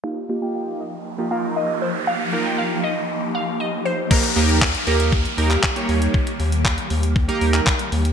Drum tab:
CC |----------------|----------------|x---------------|----------------|
HH |----------------|----------------|-xox-xox-xox-xox|-xox-xox-xox-xox|
CP |----------------|----------------|----x------xx---|----x------xx---|
BD |----------------|----------------|o---o---o---o---|o---o---o---o---|